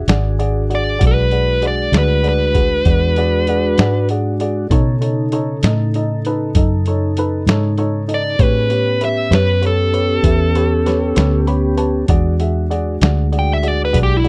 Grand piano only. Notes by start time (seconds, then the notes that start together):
0.08 F#4 G#4 D5
0.39 F#4 G#4 D5
0.70 F#4 G#4 D5
0.99 F#4 G#4 D5
1.31 F#4 G#4 D5
1.62 F#4 G#4 D5
1.92 F#4 G#4 D5
2.23 F#4 G#4 D5
2.54 F#4 G#4 B4
2.85 F#4 G#4 D5
3.17 F#4 G#4 D5
3.48 F#4 G#4 D5
3.79 F#4 G#4 D5
4.10 F#4 G#4 D5
4.40 F#4 G#4 D5
4.71 D#4 A4 C#5
5.01 D#4 A4 C#5
5.32 D#4 A4 C#5
5.64 D#4 A4 D#5
5.95 D#4 A4 D#5
6.26 D#4 A4 B4
6.56 D#4 A4 D#5
6.87 D#4 A4 C#5
7.18 D#4 A4 B4
7.48 D#4 A4 C#5
7.78 D#4 A4 C#5
8.08 D#4 A4 D#5
8.39 G4 B4 C#5
8.70 G4 B4 C#5
9.01 G4 B4 E5
9.31 G4 B4 C#5
9.61 G4 B4 C#5
9.93 G4 B4 C#5
10.24 G4 B4 E5
10.56 G4 B4 C#5
10.86 G4 B4 C#5
11.16 G4 B4 C#5
11.47 G4 B4 C#5 B5
11.77 G4 B4 C#5 A5
12.09 F#4 G#4 D5
12.39 F#4 G#4 E5
12.70 F#4 G#4 D5
13.02 F#4 G#4 D5
13.32 F#4 G#4 D5
13.63 F#4 G#4 D5
13.93 F#4 G#4 D5
14.24 F#4 G#4 D5